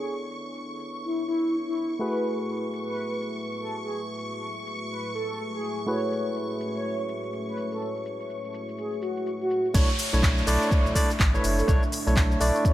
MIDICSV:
0, 0, Header, 1, 8, 480
1, 0, Start_track
1, 0, Tempo, 483871
1, 67, Time_signature, 4, 2, 24, 8
1, 12631, End_track
2, 0, Start_track
2, 0, Title_t, "String machine"
2, 0, Program_c, 0, 50
2, 0, Note_on_c, 0, 85, 84
2, 1975, Note_off_c, 0, 85, 0
2, 1987, Note_on_c, 0, 85, 85
2, 9679, Note_off_c, 0, 85, 0
2, 12631, End_track
3, 0, Start_track
3, 0, Title_t, "Analog synth pad"
3, 0, Program_c, 1, 89
3, 0, Note_on_c, 1, 62, 78
3, 0, Note_on_c, 1, 69, 71
3, 0, Note_on_c, 1, 71, 70
3, 0, Note_on_c, 1, 73, 73
3, 0, Note_on_c, 1, 76, 84
3, 1949, Note_off_c, 1, 62, 0
3, 1949, Note_off_c, 1, 69, 0
3, 1949, Note_off_c, 1, 71, 0
3, 1949, Note_off_c, 1, 73, 0
3, 1987, Note_on_c, 1, 57, 81
3, 1988, Note_on_c, 1, 66, 75
3, 1988, Note_on_c, 1, 68, 73
3, 1988, Note_on_c, 1, 71, 73
3, 5789, Note_off_c, 1, 71, 0
3, 5828, Note_on_c, 1, 73, 71
3, 9628, Note_off_c, 1, 57, 0
3, 9628, Note_off_c, 1, 66, 0
3, 9628, Note_off_c, 1, 68, 0
3, 9629, Note_off_c, 1, 76, 0
3, 9630, Note_off_c, 1, 73, 0
3, 9668, Note_on_c, 1, 57, 80
3, 9668, Note_on_c, 1, 62, 75
3, 9668, Note_on_c, 1, 85, 89
3, 9669, Note_on_c, 1, 76, 74
3, 12631, Note_off_c, 1, 57, 0
3, 12631, Note_off_c, 1, 62, 0
3, 12631, Note_off_c, 1, 76, 0
3, 12631, Note_off_c, 1, 85, 0
3, 12631, End_track
4, 0, Start_track
4, 0, Title_t, "Soft synth lead"
4, 0, Program_c, 2, 80
4, 0, Note_on_c, 2, 68, 91
4, 138, Note_off_c, 2, 68, 0
4, 1027, Note_on_c, 2, 64, 89
4, 1219, Note_off_c, 2, 64, 0
4, 1266, Note_on_c, 2, 64, 94
4, 1541, Note_off_c, 2, 64, 0
4, 1651, Note_on_c, 2, 64, 97
4, 1914, Note_off_c, 2, 64, 0
4, 1986, Note_on_c, 2, 71, 102
4, 2369, Note_off_c, 2, 71, 0
4, 2852, Note_on_c, 2, 71, 93
4, 3115, Note_off_c, 2, 71, 0
4, 3572, Note_on_c, 2, 69, 89
4, 3738, Note_off_c, 2, 69, 0
4, 3813, Note_on_c, 2, 68, 93
4, 3979, Note_off_c, 2, 68, 0
4, 4866, Note_on_c, 2, 71, 90
4, 5059, Note_off_c, 2, 71, 0
4, 5107, Note_on_c, 2, 69, 96
4, 5381, Note_off_c, 2, 69, 0
4, 5493, Note_on_c, 2, 68, 99
4, 5755, Note_off_c, 2, 68, 0
4, 5827, Note_on_c, 2, 73, 103
4, 6210, Note_off_c, 2, 73, 0
4, 6694, Note_on_c, 2, 73, 94
4, 6956, Note_off_c, 2, 73, 0
4, 7412, Note_on_c, 2, 71, 88
4, 7578, Note_off_c, 2, 71, 0
4, 7653, Note_on_c, 2, 69, 91
4, 7818, Note_off_c, 2, 69, 0
4, 8708, Note_on_c, 2, 68, 88
4, 8900, Note_off_c, 2, 68, 0
4, 8948, Note_on_c, 2, 66, 93
4, 9222, Note_off_c, 2, 66, 0
4, 9333, Note_on_c, 2, 66, 98
4, 9595, Note_off_c, 2, 66, 0
4, 9667, Note_on_c, 2, 73, 104
4, 10050, Note_off_c, 2, 73, 0
4, 10534, Note_on_c, 2, 73, 96
4, 10795, Note_off_c, 2, 73, 0
4, 11255, Note_on_c, 2, 71, 93
4, 11419, Note_off_c, 2, 71, 0
4, 11495, Note_on_c, 2, 69, 96
4, 11659, Note_off_c, 2, 69, 0
4, 12549, Note_on_c, 2, 73, 91
4, 12631, Note_off_c, 2, 73, 0
4, 12631, End_track
5, 0, Start_track
5, 0, Title_t, "Tine electric piano"
5, 0, Program_c, 3, 4
5, 0, Note_on_c, 3, 59, 69
5, 0, Note_on_c, 3, 62, 68
5, 0, Note_on_c, 3, 64, 67
5, 0, Note_on_c, 3, 69, 66
5, 0, Note_on_c, 3, 73, 80
5, 1960, Note_off_c, 3, 59, 0
5, 1962, Note_off_c, 3, 62, 0
5, 1965, Note_off_c, 3, 64, 0
5, 1967, Note_off_c, 3, 69, 0
5, 1970, Note_off_c, 3, 73, 0
5, 1977, Note_on_c, 3, 57, 69
5, 1982, Note_on_c, 3, 64, 67
5, 1987, Note_on_c, 3, 66, 68
5, 1991, Note_on_c, 3, 68, 65
5, 1996, Note_on_c, 3, 71, 79
5, 5800, Note_off_c, 3, 57, 0
5, 5802, Note_off_c, 3, 64, 0
5, 5805, Note_off_c, 3, 66, 0
5, 5807, Note_off_c, 3, 68, 0
5, 5809, Note_off_c, 3, 71, 0
5, 5818, Note_on_c, 3, 57, 72
5, 5823, Note_on_c, 3, 64, 67
5, 5827, Note_on_c, 3, 66, 67
5, 5832, Note_on_c, 3, 68, 66
5, 5836, Note_on_c, 3, 71, 81
5, 9640, Note_off_c, 3, 57, 0
5, 9643, Note_off_c, 3, 64, 0
5, 9645, Note_off_c, 3, 66, 0
5, 9647, Note_off_c, 3, 68, 0
5, 9649, Note_off_c, 3, 71, 0
5, 9663, Note_on_c, 3, 57, 91
5, 9666, Note_on_c, 3, 62, 85
5, 9669, Note_on_c, 3, 64, 84
5, 9672, Note_on_c, 3, 73, 100
5, 9806, Note_off_c, 3, 57, 0
5, 9808, Note_off_c, 3, 62, 0
5, 9809, Note_off_c, 3, 64, 0
5, 9811, Note_off_c, 3, 73, 0
5, 10049, Note_on_c, 3, 57, 82
5, 10052, Note_on_c, 3, 62, 74
5, 10055, Note_on_c, 3, 64, 72
5, 10058, Note_on_c, 3, 73, 86
5, 10363, Note_off_c, 3, 57, 0
5, 10364, Note_off_c, 3, 62, 0
5, 10366, Note_off_c, 3, 64, 0
5, 10368, Note_off_c, 3, 73, 0
5, 10383, Note_on_c, 3, 57, 93
5, 10386, Note_on_c, 3, 62, 87
5, 10389, Note_on_c, 3, 64, 85
5, 10392, Note_on_c, 3, 74, 99
5, 10843, Note_off_c, 3, 57, 0
5, 10844, Note_off_c, 3, 62, 0
5, 10846, Note_off_c, 3, 64, 0
5, 10848, Note_off_c, 3, 74, 0
5, 10863, Note_on_c, 3, 57, 98
5, 10866, Note_on_c, 3, 62, 89
5, 10869, Note_on_c, 3, 64, 89
5, 10872, Note_on_c, 3, 74, 108
5, 11006, Note_off_c, 3, 57, 0
5, 11008, Note_off_c, 3, 62, 0
5, 11010, Note_off_c, 3, 64, 0
5, 11011, Note_off_c, 3, 74, 0
5, 11249, Note_on_c, 3, 57, 86
5, 11252, Note_on_c, 3, 62, 80
5, 11255, Note_on_c, 3, 64, 78
5, 11259, Note_on_c, 3, 73, 97
5, 11563, Note_off_c, 3, 57, 0
5, 11565, Note_off_c, 3, 62, 0
5, 11566, Note_off_c, 3, 64, 0
5, 11568, Note_off_c, 3, 73, 0
5, 11583, Note_on_c, 3, 57, 96
5, 11586, Note_on_c, 3, 62, 88
5, 11589, Note_on_c, 3, 64, 83
5, 11593, Note_on_c, 3, 73, 103
5, 11727, Note_off_c, 3, 57, 0
5, 11728, Note_off_c, 3, 62, 0
5, 11730, Note_off_c, 3, 64, 0
5, 11731, Note_off_c, 3, 73, 0
5, 11968, Note_on_c, 3, 57, 81
5, 11971, Note_on_c, 3, 62, 75
5, 11975, Note_on_c, 3, 64, 73
5, 11978, Note_on_c, 3, 73, 87
5, 12283, Note_off_c, 3, 57, 0
5, 12284, Note_off_c, 3, 62, 0
5, 12286, Note_off_c, 3, 64, 0
5, 12287, Note_off_c, 3, 73, 0
5, 12303, Note_on_c, 3, 57, 93
5, 12306, Note_on_c, 3, 62, 89
5, 12310, Note_on_c, 3, 64, 86
5, 12313, Note_on_c, 3, 74, 102
5, 12631, Note_off_c, 3, 57, 0
5, 12631, Note_off_c, 3, 62, 0
5, 12631, Note_off_c, 3, 64, 0
5, 12631, Note_off_c, 3, 74, 0
5, 12631, End_track
6, 0, Start_track
6, 0, Title_t, "Sub bass"
6, 0, Program_c, 4, 38
6, 9668, Note_on_c, 4, 35, 102
6, 9772, Note_off_c, 4, 35, 0
6, 10053, Note_on_c, 4, 35, 95
6, 10344, Note_off_c, 4, 35, 0
6, 10388, Note_on_c, 4, 35, 100
6, 10492, Note_off_c, 4, 35, 0
6, 10774, Note_on_c, 4, 35, 100
6, 10841, Note_off_c, 4, 35, 0
6, 11108, Note_on_c, 4, 33, 96
6, 11294, Note_off_c, 4, 33, 0
6, 11347, Note_on_c, 4, 30, 103
6, 11534, Note_off_c, 4, 30, 0
6, 11588, Note_on_c, 4, 35, 104
6, 11692, Note_off_c, 4, 35, 0
6, 11974, Note_on_c, 4, 35, 94
6, 12265, Note_off_c, 4, 35, 0
6, 12309, Note_on_c, 4, 35, 104
6, 12412, Note_off_c, 4, 35, 0
6, 12631, End_track
7, 0, Start_track
7, 0, Title_t, "Downlifter"
7, 0, Program_c, 5, 103
7, 9668, Note_on_c, 5, 60, 81
7, 12631, Note_off_c, 5, 60, 0
7, 12631, End_track
8, 0, Start_track
8, 0, Title_t, "Drums"
8, 71, Note_on_c, 9, 82, 42
8, 171, Note_off_c, 9, 82, 0
8, 217, Note_on_c, 9, 82, 21
8, 311, Note_off_c, 9, 82, 0
8, 311, Note_on_c, 9, 82, 70
8, 410, Note_off_c, 9, 82, 0
8, 457, Note_on_c, 9, 82, 31
8, 550, Note_off_c, 9, 82, 0
8, 550, Note_on_c, 9, 82, 41
8, 649, Note_off_c, 9, 82, 0
8, 696, Note_on_c, 9, 82, 20
8, 790, Note_off_c, 9, 82, 0
8, 790, Note_on_c, 9, 82, 73
8, 889, Note_off_c, 9, 82, 0
8, 936, Note_on_c, 9, 82, 31
8, 1030, Note_off_c, 9, 82, 0
8, 1030, Note_on_c, 9, 82, 41
8, 1129, Note_off_c, 9, 82, 0
8, 1270, Note_on_c, 9, 82, 70
8, 1370, Note_off_c, 9, 82, 0
8, 1416, Note_on_c, 9, 82, 32
8, 1510, Note_off_c, 9, 82, 0
8, 1510, Note_on_c, 9, 82, 42
8, 1610, Note_off_c, 9, 82, 0
8, 1656, Note_on_c, 9, 82, 20
8, 1750, Note_off_c, 9, 82, 0
8, 1750, Note_on_c, 9, 82, 73
8, 1849, Note_off_c, 9, 82, 0
8, 1896, Note_on_c, 9, 82, 32
8, 1990, Note_off_c, 9, 82, 0
8, 1990, Note_on_c, 9, 82, 42
8, 2089, Note_off_c, 9, 82, 0
8, 2230, Note_on_c, 9, 82, 70
8, 2329, Note_off_c, 9, 82, 0
8, 2376, Note_on_c, 9, 82, 30
8, 2470, Note_off_c, 9, 82, 0
8, 2470, Note_on_c, 9, 82, 41
8, 2570, Note_off_c, 9, 82, 0
8, 2616, Note_on_c, 9, 82, 20
8, 2710, Note_off_c, 9, 82, 0
8, 2710, Note_on_c, 9, 82, 74
8, 2809, Note_off_c, 9, 82, 0
8, 2856, Note_on_c, 9, 82, 32
8, 2950, Note_off_c, 9, 82, 0
8, 2950, Note_on_c, 9, 82, 41
8, 3049, Note_off_c, 9, 82, 0
8, 3190, Note_on_c, 9, 82, 71
8, 3289, Note_off_c, 9, 82, 0
8, 3336, Note_on_c, 9, 82, 32
8, 3430, Note_off_c, 9, 82, 0
8, 3430, Note_on_c, 9, 82, 42
8, 3529, Note_off_c, 9, 82, 0
8, 3576, Note_on_c, 9, 82, 19
8, 3670, Note_off_c, 9, 82, 0
8, 3670, Note_on_c, 9, 82, 73
8, 3770, Note_off_c, 9, 82, 0
8, 3816, Note_on_c, 9, 82, 31
8, 3911, Note_off_c, 9, 82, 0
8, 3911, Note_on_c, 9, 82, 44
8, 4010, Note_off_c, 9, 82, 0
8, 4057, Note_on_c, 9, 82, 22
8, 4151, Note_off_c, 9, 82, 0
8, 4151, Note_on_c, 9, 82, 73
8, 4250, Note_off_c, 9, 82, 0
8, 4297, Note_on_c, 9, 82, 32
8, 4391, Note_off_c, 9, 82, 0
8, 4391, Note_on_c, 9, 82, 42
8, 4490, Note_off_c, 9, 82, 0
8, 4538, Note_on_c, 9, 82, 22
8, 4631, Note_off_c, 9, 82, 0
8, 4631, Note_on_c, 9, 82, 74
8, 4730, Note_off_c, 9, 82, 0
8, 4777, Note_on_c, 9, 82, 33
8, 4871, Note_off_c, 9, 82, 0
8, 4871, Note_on_c, 9, 82, 42
8, 4971, Note_off_c, 9, 82, 0
8, 5111, Note_on_c, 9, 82, 75
8, 5210, Note_off_c, 9, 82, 0
8, 5257, Note_on_c, 9, 82, 33
8, 5352, Note_off_c, 9, 82, 0
8, 5352, Note_on_c, 9, 82, 44
8, 5451, Note_off_c, 9, 82, 0
8, 5497, Note_on_c, 9, 82, 21
8, 5592, Note_off_c, 9, 82, 0
8, 5592, Note_on_c, 9, 82, 75
8, 5691, Note_off_c, 9, 82, 0
8, 5737, Note_on_c, 9, 82, 33
8, 5832, Note_off_c, 9, 82, 0
8, 5832, Note_on_c, 9, 82, 46
8, 5931, Note_off_c, 9, 82, 0
8, 5977, Note_on_c, 9, 82, 22
8, 6071, Note_off_c, 9, 82, 0
8, 6071, Note_on_c, 9, 82, 78
8, 6170, Note_off_c, 9, 82, 0
8, 6217, Note_on_c, 9, 82, 32
8, 6311, Note_off_c, 9, 82, 0
8, 6311, Note_on_c, 9, 82, 44
8, 6410, Note_off_c, 9, 82, 0
8, 6457, Note_on_c, 9, 82, 22
8, 6551, Note_off_c, 9, 82, 0
8, 6551, Note_on_c, 9, 82, 82
8, 6651, Note_off_c, 9, 82, 0
8, 6697, Note_on_c, 9, 82, 33
8, 6791, Note_off_c, 9, 82, 0
8, 6791, Note_on_c, 9, 82, 44
8, 6890, Note_off_c, 9, 82, 0
8, 6937, Note_on_c, 9, 82, 22
8, 7031, Note_off_c, 9, 82, 0
8, 7031, Note_on_c, 9, 82, 82
8, 7130, Note_off_c, 9, 82, 0
8, 7177, Note_on_c, 9, 82, 35
8, 7271, Note_off_c, 9, 82, 0
8, 7271, Note_on_c, 9, 82, 44
8, 7371, Note_off_c, 9, 82, 0
8, 7417, Note_on_c, 9, 82, 22
8, 7511, Note_off_c, 9, 82, 0
8, 7511, Note_on_c, 9, 82, 78
8, 7610, Note_off_c, 9, 82, 0
8, 7657, Note_on_c, 9, 82, 35
8, 7751, Note_off_c, 9, 82, 0
8, 7751, Note_on_c, 9, 82, 45
8, 7850, Note_off_c, 9, 82, 0
8, 7896, Note_on_c, 9, 82, 22
8, 7990, Note_off_c, 9, 82, 0
8, 7990, Note_on_c, 9, 82, 77
8, 8089, Note_off_c, 9, 82, 0
8, 8136, Note_on_c, 9, 82, 34
8, 8230, Note_off_c, 9, 82, 0
8, 8230, Note_on_c, 9, 82, 44
8, 8330, Note_off_c, 9, 82, 0
8, 8377, Note_on_c, 9, 82, 22
8, 8471, Note_off_c, 9, 82, 0
8, 8471, Note_on_c, 9, 82, 82
8, 8570, Note_off_c, 9, 82, 0
8, 8616, Note_on_c, 9, 82, 36
8, 8710, Note_off_c, 9, 82, 0
8, 8710, Note_on_c, 9, 82, 44
8, 8810, Note_off_c, 9, 82, 0
8, 8856, Note_on_c, 9, 82, 23
8, 8950, Note_off_c, 9, 82, 0
8, 8950, Note_on_c, 9, 82, 81
8, 9049, Note_off_c, 9, 82, 0
8, 9096, Note_on_c, 9, 82, 36
8, 9190, Note_off_c, 9, 82, 0
8, 9190, Note_on_c, 9, 82, 47
8, 9290, Note_off_c, 9, 82, 0
8, 9336, Note_on_c, 9, 82, 22
8, 9430, Note_off_c, 9, 82, 0
8, 9430, Note_on_c, 9, 82, 82
8, 9529, Note_off_c, 9, 82, 0
8, 9576, Note_on_c, 9, 82, 34
8, 9667, Note_on_c, 9, 49, 108
8, 9668, Note_on_c, 9, 36, 120
8, 9670, Note_off_c, 9, 82, 0
8, 9670, Note_on_c, 9, 82, 48
8, 9766, Note_off_c, 9, 49, 0
8, 9767, Note_off_c, 9, 36, 0
8, 9769, Note_off_c, 9, 82, 0
8, 9816, Note_on_c, 9, 82, 24
8, 9907, Note_on_c, 9, 46, 108
8, 9910, Note_off_c, 9, 82, 0
8, 9910, Note_on_c, 9, 82, 85
8, 10006, Note_off_c, 9, 46, 0
8, 10009, Note_off_c, 9, 82, 0
8, 10056, Note_on_c, 9, 82, 34
8, 10148, Note_on_c, 9, 36, 125
8, 10148, Note_on_c, 9, 39, 126
8, 10151, Note_off_c, 9, 82, 0
8, 10151, Note_on_c, 9, 82, 46
8, 10247, Note_off_c, 9, 36, 0
8, 10248, Note_off_c, 9, 39, 0
8, 10250, Note_off_c, 9, 82, 0
8, 10296, Note_on_c, 9, 82, 23
8, 10387, Note_on_c, 9, 46, 113
8, 10390, Note_off_c, 9, 82, 0
8, 10390, Note_on_c, 9, 82, 85
8, 10486, Note_off_c, 9, 46, 0
8, 10490, Note_off_c, 9, 82, 0
8, 10536, Note_on_c, 9, 82, 37
8, 10628, Note_on_c, 9, 36, 123
8, 10631, Note_off_c, 9, 82, 0
8, 10631, Note_on_c, 9, 82, 45
8, 10727, Note_off_c, 9, 36, 0
8, 10730, Note_off_c, 9, 82, 0
8, 10776, Note_on_c, 9, 82, 24
8, 10867, Note_on_c, 9, 46, 108
8, 10868, Note_on_c, 9, 36, 61
8, 10870, Note_off_c, 9, 82, 0
8, 10870, Note_on_c, 9, 82, 85
8, 10966, Note_off_c, 9, 46, 0
8, 10967, Note_off_c, 9, 36, 0
8, 10970, Note_off_c, 9, 82, 0
8, 11016, Note_on_c, 9, 82, 36
8, 11108, Note_on_c, 9, 36, 122
8, 11108, Note_on_c, 9, 39, 127
8, 11111, Note_off_c, 9, 82, 0
8, 11111, Note_on_c, 9, 82, 48
8, 11207, Note_off_c, 9, 36, 0
8, 11207, Note_off_c, 9, 39, 0
8, 11210, Note_off_c, 9, 82, 0
8, 11256, Note_on_c, 9, 82, 23
8, 11348, Note_on_c, 9, 46, 110
8, 11351, Note_off_c, 9, 82, 0
8, 11351, Note_on_c, 9, 82, 87
8, 11447, Note_off_c, 9, 46, 0
8, 11450, Note_off_c, 9, 82, 0
8, 11497, Note_on_c, 9, 82, 38
8, 11588, Note_on_c, 9, 36, 122
8, 11591, Note_off_c, 9, 82, 0
8, 11591, Note_on_c, 9, 82, 48
8, 11687, Note_off_c, 9, 36, 0
8, 11690, Note_off_c, 9, 82, 0
8, 11737, Note_on_c, 9, 82, 23
8, 11827, Note_on_c, 9, 46, 108
8, 11830, Note_off_c, 9, 82, 0
8, 11830, Note_on_c, 9, 82, 81
8, 11927, Note_off_c, 9, 46, 0
8, 11930, Note_off_c, 9, 82, 0
8, 11977, Note_on_c, 9, 82, 34
8, 12068, Note_on_c, 9, 36, 125
8, 12068, Note_on_c, 9, 39, 126
8, 12071, Note_off_c, 9, 82, 0
8, 12071, Note_on_c, 9, 82, 45
8, 12167, Note_off_c, 9, 36, 0
8, 12167, Note_off_c, 9, 39, 0
8, 12170, Note_off_c, 9, 82, 0
8, 12216, Note_on_c, 9, 82, 23
8, 12307, Note_on_c, 9, 46, 112
8, 12310, Note_off_c, 9, 82, 0
8, 12310, Note_on_c, 9, 82, 80
8, 12406, Note_off_c, 9, 46, 0
8, 12409, Note_off_c, 9, 82, 0
8, 12456, Note_on_c, 9, 82, 36
8, 12548, Note_on_c, 9, 36, 127
8, 12550, Note_off_c, 9, 82, 0
8, 12550, Note_on_c, 9, 82, 44
8, 12631, Note_off_c, 9, 36, 0
8, 12631, Note_off_c, 9, 82, 0
8, 12631, End_track
0, 0, End_of_file